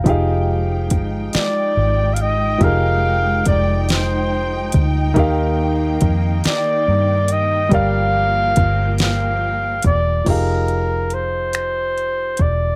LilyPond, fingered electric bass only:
\new Staff \with { instrumentName = "Fingered electric bass" } { \clef bass \time 6/8 \key f \dorian \tempo 4. = 47 f,,4 g,,8 r8 aes,,4 | f,,4 f,,4. d,8 | ees,4 f,8 r8 g,4 | g,,4 g,,4. e,,8 |
f,,2~ f,,8 e,,8 | }